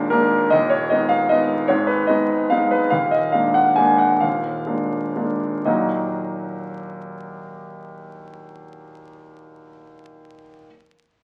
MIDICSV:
0, 0, Header, 1, 2, 480
1, 0, Start_track
1, 0, Key_signature, -6, "minor"
1, 0, Tempo, 395517
1, 630, Time_signature, 3, 2, 24, 8
1, 2544, Tempo, 422833
1, 4944, Tempo, 447094
1, 5424, Tempo, 510638
1, 6384, Tempo, 478851
1, 9264, Tempo, 456969
1, 12077, End_track
2, 0, Start_track
2, 0, Title_t, "Grand piano"
2, 0, Program_c, 0, 0
2, 0, Control_c, 0, 64, 127
2, 0, Note_on_c, 0, 27, 41
2, 0, Note_on_c, 0, 39, 45
2, 0, Note_on_c, 0, 56, 32
2, 0, Note_on_c, 0, 58, 28
2, 0, Note_on_c, 0, 62, 32
2, 0, Note_on_c, 0, 77, 60
2, 123, Note_on_c, 0, 70, 58
2, 143, Note_off_c, 0, 56, 0
2, 143, Note_on_c, 0, 56, 35
2, 147, Note_off_c, 0, 58, 0
2, 147, Note_on_c, 0, 58, 35
2, 152, Note_off_c, 0, 62, 0
2, 152, Note_on_c, 0, 62, 38
2, 579, Note_off_c, 0, 56, 0
2, 581, Note_off_c, 0, 58, 0
2, 584, Note_off_c, 0, 62, 0
2, 612, Note_on_c, 0, 75, 64
2, 617, Note_off_c, 0, 70, 0
2, 632, Note_off_c, 0, 27, 0
2, 632, Note_on_c, 0, 27, 41
2, 635, Note_off_c, 0, 39, 0
2, 635, Note_on_c, 0, 39, 45
2, 651, Control_c, 0, 64, 0
2, 657, Note_off_c, 0, 77, 0
2, 844, Note_on_c, 0, 73, 59
2, 854, Note_off_c, 0, 75, 0
2, 861, Control_c, 0, 64, 127
2, 1088, Note_off_c, 0, 27, 0
2, 1089, Note_off_c, 0, 39, 0
2, 1089, Note_on_c, 0, 75, 55
2, 1091, Note_off_c, 0, 73, 0
2, 1110, Note_on_c, 0, 56, 28
2, 1111, Note_on_c, 0, 59, 29
2, 1119, Note_on_c, 0, 63, 31
2, 1319, Note_on_c, 0, 77, 63
2, 1337, Note_off_c, 0, 75, 0
2, 1543, Note_off_c, 0, 56, 0
2, 1543, Note_off_c, 0, 59, 0
2, 1548, Note_off_c, 0, 63, 0
2, 1568, Note_on_c, 0, 75, 56
2, 1575, Note_off_c, 0, 77, 0
2, 1589, Note_on_c, 0, 56, 33
2, 1593, Note_on_c, 0, 59, 32
2, 1602, Note_on_c, 0, 63, 38
2, 2016, Note_off_c, 0, 56, 0
2, 2018, Note_off_c, 0, 59, 0
2, 2023, Note_off_c, 0, 63, 0
2, 2037, Note_on_c, 0, 73, 62
2, 2052, Note_on_c, 0, 44, 43
2, 2053, Note_off_c, 0, 75, 0
2, 2054, Note_on_c, 0, 32, 39
2, 2087, Control_c, 0, 64, 0
2, 2258, Control_c, 0, 64, 127
2, 2268, Note_on_c, 0, 71, 50
2, 2285, Note_off_c, 0, 73, 0
2, 2514, Note_on_c, 0, 75, 48
2, 2524, Note_off_c, 0, 44, 0
2, 2525, Note_off_c, 0, 32, 0
2, 2529, Note_off_c, 0, 71, 0
2, 2536, Note_on_c, 0, 56, 28
2, 2541, Note_on_c, 0, 59, 26
2, 2548, Note_on_c, 0, 63, 33
2, 2973, Note_off_c, 0, 56, 0
2, 2975, Note_off_c, 0, 59, 0
2, 2979, Note_off_c, 0, 63, 0
2, 3000, Note_on_c, 0, 77, 56
2, 3008, Note_off_c, 0, 75, 0
2, 3022, Note_on_c, 0, 56, 29
2, 3023, Note_on_c, 0, 59, 28
2, 3028, Note_on_c, 0, 63, 31
2, 3241, Note_on_c, 0, 71, 49
2, 3245, Note_off_c, 0, 77, 0
2, 3439, Note_off_c, 0, 56, 0
2, 3439, Note_off_c, 0, 59, 0
2, 3442, Note_off_c, 0, 63, 0
2, 3460, Note_on_c, 0, 77, 59
2, 3477, Note_off_c, 0, 71, 0
2, 3479, Note_on_c, 0, 27, 33
2, 3479, Note_on_c, 0, 39, 37
2, 3504, Control_c, 0, 64, 0
2, 3698, Control_c, 0, 64, 127
2, 3698, Note_on_c, 0, 75, 48
2, 3703, Note_off_c, 0, 77, 0
2, 3934, Note_on_c, 0, 77, 49
2, 3939, Note_off_c, 0, 27, 0
2, 3939, Note_off_c, 0, 39, 0
2, 3947, Note_off_c, 0, 75, 0
2, 3951, Note_on_c, 0, 56, 23
2, 3959, Note_on_c, 0, 58, 22
2, 3961, Note_on_c, 0, 62, 27
2, 4185, Note_on_c, 0, 78, 50
2, 4191, Note_off_c, 0, 77, 0
2, 4403, Note_off_c, 0, 56, 0
2, 4407, Note_off_c, 0, 58, 0
2, 4408, Note_off_c, 0, 62, 0
2, 4430, Note_on_c, 0, 80, 55
2, 4443, Note_off_c, 0, 78, 0
2, 4451, Note_on_c, 0, 56, 27
2, 4456, Note_on_c, 0, 58, 27
2, 4456, Note_on_c, 0, 62, 29
2, 4684, Note_on_c, 0, 78, 46
2, 4689, Note_off_c, 0, 80, 0
2, 4899, Note_off_c, 0, 56, 0
2, 4901, Note_off_c, 0, 58, 0
2, 4901, Note_off_c, 0, 62, 0
2, 4935, Note_on_c, 0, 77, 46
2, 4936, Note_off_c, 0, 78, 0
2, 4955, Note_on_c, 0, 27, 31
2, 4956, Note_on_c, 0, 39, 31
2, 4969, Control_c, 0, 64, 0
2, 5154, Control_c, 0, 64, 127
2, 5415, Note_off_c, 0, 27, 0
2, 5416, Note_off_c, 0, 39, 0
2, 5433, Note_on_c, 0, 56, 22
2, 5437, Note_on_c, 0, 58, 22
2, 5440, Note_on_c, 0, 62, 23
2, 5646, Note_off_c, 0, 77, 0
2, 5857, Note_off_c, 0, 56, 0
2, 5859, Note_off_c, 0, 58, 0
2, 5861, Note_off_c, 0, 62, 0
2, 5895, Note_on_c, 0, 56, 20
2, 5901, Note_on_c, 0, 58, 21
2, 5904, Note_on_c, 0, 62, 24
2, 6348, Note_off_c, 0, 56, 0
2, 6351, Note_off_c, 0, 58, 0
2, 6352, Note_off_c, 0, 62, 0
2, 6360, Note_on_c, 0, 75, 29
2, 6366, Note_on_c, 0, 39, 30
2, 6367, Note_on_c, 0, 46, 23
2, 6371, Note_on_c, 0, 54, 24
2, 6374, Note_on_c, 0, 58, 23
2, 6375, Note_on_c, 0, 63, 23
2, 6376, Note_on_c, 0, 66, 24
2, 6406, Control_c, 0, 64, 0
2, 6571, Control_c, 0, 64, 127
2, 10454, Note_off_c, 0, 75, 0
2, 10460, Note_off_c, 0, 39, 0
2, 10461, Note_off_c, 0, 46, 0
2, 10465, Note_off_c, 0, 54, 0
2, 10469, Note_off_c, 0, 58, 0
2, 10470, Note_off_c, 0, 63, 0
2, 10471, Note_off_c, 0, 66, 0
2, 11488, Control_c, 0, 64, 0
2, 12077, End_track
0, 0, End_of_file